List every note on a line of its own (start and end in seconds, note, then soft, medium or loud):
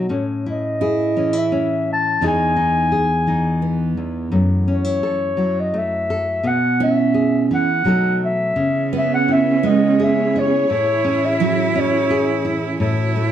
0.09 2.17 A2 medium
0.09 1.15 C#4 soft
0.46 1.16 E4 soft
0.51 1.40 D#5 medium
0.81 1.68 E4 medium
0.81 1.87 G#4 soft
1.16 2.21 E3 soft
1.16 1.33 C#4 soft
1.33 2.21 E4 soft
1.38 1.89 E5 medium
1.52 2.18 C#4 soft
1.93 2.22 A5 medium
2.21 3.96 E2 medium
2.21 3.27 E3 soft
2.21 4.29 B3 soft
2.21 3.09 D#4 soft
2.21 2.55 D#4 soft
2.21 2.91 G#4 medium
2.28 3.97 G#5 medium
2.56 3.27 D#4 soft
2.92 4.29 G#4 soft
3.27 5.37 E3 soft
3.27 4.29 D#4 soft
3.62 4.49 B3 soft
3.97 4.31 E2 soft
4.32 6.40 F#2 medium
4.32 5.73 A3 soft
4.68 4.85 C#4 soft
4.72 5.62 C#5 medium
4.85 5.37 E4 soft
5.03 6.09 A4 soft
5.37 6.40 F#3 soft
5.37 6.40 E4 soft
5.60 5.80 D#5 medium
5.74 6.44 A3 soft
5.78 6.49 E5 medium
6.10 6.41 A4 medium
6.43 7.50 B2 medium
6.43 7.82 B3 soft
6.43 6.81 F#5 medium
6.80 7.67 C#4 medium
6.80 7.50 E4 soft
6.80 7.48 E5 medium
7.14 7.81 G#4 soft
7.51 7.85 E3 soft
7.51 7.82 E4 soft
7.51 8.19 F#5 medium
7.84 8.56 B2 medium
7.84 8.52 F#3 soft
7.84 8.57 A3 soft
7.84 8.22 D#4 soft
7.84 8.54 A4 soft
8.25 8.90 E5 medium
8.56 10.64 C#3 medium
8.56 10.67 B3 medium
8.56 10.65 C#4 medium
8.56 10.67 C#4 medium
8.56 13.32 E4 medium
8.56 12.77 G#4 medium
8.56 12.77 C#5 medium
8.93 9.63 B3 medium
8.93 9.80 B3 medium
8.98 9.12 E5 medium
9.14 9.29 F#5 medium
9.28 10.35 E4 soft
9.28 9.68 E5 medium
9.63 10.50 G#3 medium
9.63 10.65 B3 medium
9.63 10.00 D#5 medium
9.99 10.65 G#4 medium
9.99 10.40 E5 medium
10.36 11.41 E4 medium
10.36 10.71 C#5 medium
10.68 12.77 A2 medium
10.68 13.32 E3 medium
10.68 13.32 C#4 medium
10.68 12.77 E4 loud
10.73 11.27 C#5 medium
11.04 11.75 C#4 medium
11.25 11.81 E5 medium
11.40 12.27 F#3 medium
11.40 12.44 E4 soft
11.75 12.77 C#4 medium
11.80 12.48 C#5 medium
12.10 12.76 G#4 medium
12.45 12.76 E4 medium
12.80 13.32 A2 medium
12.80 13.32 E4 loud
12.80 13.32 F#4 medium
12.80 13.32 C#5 medium
13.16 13.32 A3 medium